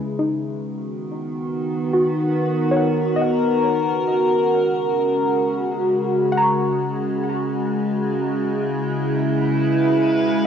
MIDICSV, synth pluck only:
0, 0, Header, 1, 2, 480
1, 0, Start_track
1, 0, Tempo, 500000
1, 10048, End_track
2, 0, Start_track
2, 0, Title_t, "Synth pluck"
2, 0, Program_c, 0, 84
2, 182, Note_on_c, 0, 63, 48
2, 1442, Note_off_c, 0, 63, 0
2, 1857, Note_on_c, 0, 66, 52
2, 2604, Note_on_c, 0, 73, 68
2, 2654, Note_on_c, 0, 78, 48
2, 3035, Note_on_c, 0, 75, 71
2, 3074, Note_off_c, 0, 78, 0
2, 3086, Note_on_c, 0, 78, 50
2, 3101, Note_off_c, 0, 66, 0
2, 3849, Note_off_c, 0, 73, 0
2, 3973, Note_off_c, 0, 75, 0
2, 3998, Note_off_c, 0, 78, 0
2, 6068, Note_on_c, 0, 78, 69
2, 6119, Note_on_c, 0, 82, 51
2, 6161, Note_on_c, 0, 85, 47
2, 7313, Note_off_c, 0, 78, 0
2, 7338, Note_off_c, 0, 82, 0
2, 7360, Note_off_c, 0, 85, 0
2, 10048, End_track
0, 0, End_of_file